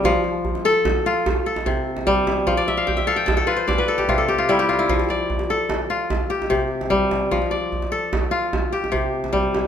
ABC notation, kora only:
X:1
M:12/8
L:1/16
Q:3/8=99
K:Flyd
V:1 name="Kora"
z6 A6 z2 A6 z4 | z d e f g e f g a A B c d B A G F A G F E G F E- | E z d6 z6 G6 z4 | z2 d6 z6 G6 z4 |]
V:2 name="Kora" clef=bass
F,4 z2 A4 F2 z4 C,4 G,4 | F,4 z2 A4 F2 z4 C,4 G,4 | F,4 z2 A4 F2 z4 C,4 G,4 | F,4 z2 A4 F2 z4 C,4 G,4 |]